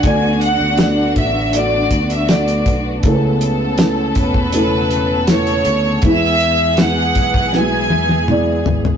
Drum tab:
HH |x-x-x-x-x-xxxxx-|x-x-x-x-x-x-xxx-|x-x-x-x---------|
SD |----o-------o---|----o-------o---|----o---o-------|
T1 |----------------|----------------|----------oo----|
T2 |----------------|----------------|------------o---|
FT |----------------|----------------|--------------oo|
BD |o-----o---o---o-|o-----oo--------|o-----oo--------|